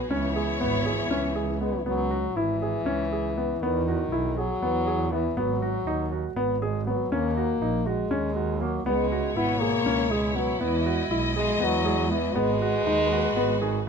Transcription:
Already playing: G#3
0.11 C#2 E3 B3 C#4 E4 C#5
0.36 G#4
0.61 G#1 B3
0.86 E3 G#4
1.11 C#2 C#4
1.35 G#4
1.61 G#3 B3
1.86 C#2 F#3 B3
2.11 F#4
2.36 G#1 E3 E4
2.62 G#4
2.86 C#2 C#4
3.12 G#4
3.38 B3
3.61 E2 D#3 B3
3.88 F#4
4.11 B1 E4
4.37 F#3 G#4
4.62 E2 B3
4.87 G#4
5.12 E3 B3
5.37 G#1 F#3 B3
5.62 F#4
5.87 D#2 D#4
6.12 F#4
6.36 G#1 B3
6.62 G#3 G#4
6.86 F#3 B3
7.12 D#2 A#3 C#4
7.37 F#4
7.62 A#1 D#4
7.86 G#3 F#4
8.11 D#2 C#4
8.36 F#4
8.61 F#3 A#3
8.86 C#2 B2 G#3 B3 E4 C#5
9.12 F#4
9.36 G#1 B3 E4
9.60 A#3 G#4
9.86 C#2 C#4
10.11 G#3 G#4
10.35 F#3 B3
10.60 E2 E3 G#3 B3 D#5
10.86 F#4
11.11 B1 E4
11.36 G#3 G#4
11.60 E2 F#3 B3
11.85 G#4
12.11 E3 B3
12.36 G#1 G#3 B3 F#4 B4
12.62 F#4
12.86 D#2 D#4
13.12 F#4
13.36 G#1 B3
13.61 D#3 G#4
13.81 D#3

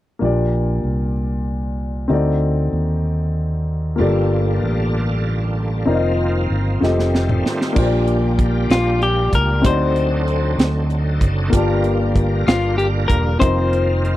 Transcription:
0.19 A#1 A#2 A#3 D4 F4
0.23 G4 D5
0.84 C2
2.08 D2 D3 C4 D#4 F#4
2.12 A4 D5
2.73 D#2
3.96 G1 G2 D3 G3 A#3 F4 G4 A4
4.00 A4 D5
4.62 A1
5.86 F1 D#3 F3 C4 D#4 F4 A#4 D5
5.94 D#5
6.50 G1
6.80 F1 G3 A3 C4 F4 G4 A4 D#5, snare
6.99 snare
7.15 snare
7.29 mid tom
7.46 snare
7.61 snare
7.73 A#1 A#2 G3 A#3 D4 F4 G4, kick, crash
7.77 G4 C5
7.85 D5
8.07 closed hi-hat
8.39 kick, closed hi-hat
8.70 A#1 F4, snare, closed hi-hat
9.02 G4, closed hi-hat
9.32 C#2 A#4, kick, closed hi-hat
9.62 D2 D3 F#3 C4 D#4 F#4 A4, kick, closed hi-hat
9.66 C5 D5
9.96 closed hi-hat
10.28 closed hi-hat
10.59 D2, snare, closed hi-hat
10.90 closed hi-hat
11.21 F#1, kick, closed hi-hat
11.50 G1 G2 G3 A#3 F4 G4 A#4, kick, closed hi-hat
11.54 A#3 F4 D5 A5
11.84 closed hi-hat
12.16 kick, closed hi-hat
12.47 G1 F4, snare, closed hi-hat
12.78 G4, closed hi-hat
13.08 E1 A#4, kick, closed hi-hat
13.39 F1 D#3 F3 C4 D#4 F4 A#4 C5 D#5, kick, closed hi-hat
13.73 closed hi-hat
14.05 closed hi-hat

